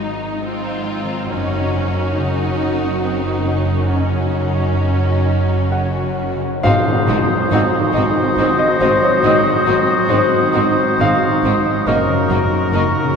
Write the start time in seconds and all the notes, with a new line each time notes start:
Already playing: G#1 G#2 D#3 F#3 D#4 C5 D#5
0.01 D#4
0.16 D#5
0.45 C4 F4 C5
0.75 F#3
0.89 C4
1.03 D#3
1.31 F#1 F#2 C#4 D#4 F#4
1.60 F#3
1.88 D#4
2.16 C#3 C#4 D#4 C#6
2.45 F#4
2.74 D#5
3.03 C4 D#4 A#4
3.33 F#3
3.48 C#4
3.62 C#3
3.91 F#2 C#4 D#4 F#4
4.23 F#3
4.53 D#4
4.83 F#3 C#5
5.13 F#4
5.42 D#5
5.72 C#5 F#5
6.03 F#3
6.34 C#3
6.63 G#1 G#2 F#3 C4 D#4 F#4 C5 F5 D#6, tam-tam
6.86 D#3
6.94 D#4
7.08 G#1 G#2 F#3 C4 D#4 F#4
7.24 F#3
7.30 D#4
7.51 G#1 G#2 C4 D#4 F#4
7.73 F#4
7.81 D#3
7.93 G#1 G#2 C4 D#4 F#4 D#5
8.11 D#4
8.16 C6
8.37 G#1 G#2 D#3 C4 D#4 F#4 D#5
8.59 C5 D#5
8.69 D#4
8.80 G#1 G#2 C4 D#4 F#4 C5
8.97 F#3 C5
9.03 C#5
9.22 G#1 G#2 C4 D#4 F#4 D#5
9.45 D#3
9.53 D#4
9.65 G#1 G#2 F#3 C4 D#4 F#4
9.83 F#3
9.87 D#4
10.08 G#1 G#2 C4 D#4 F#4 C5
10.31 F#4
10.40 D#3
10.53 G#1 G#2 C4 D#4 F#4 D#5
10.72 D#4
10.76 C6
11.00 G#1 G#2 D#3 C4 D#4 F#4 D#5 F5
11.22 C5
11.33 D#4
11.43 G#1 G#2 C4 D#4 F#4
11.60 C5
11.65 F#3
11.86 F#1 F#2 F#3 A#3 C#4 D#4 F#4 A#4 D#5 C#6
12.07 C#3
12.18 D#4
12.29 F#1 F#2 F#3 A#3 D#4 F#4
12.47 F#3 D#4
12.72 F#1 F#2 A#3 D#4 F#4 A#4
12.94 F#4
13.03 C#3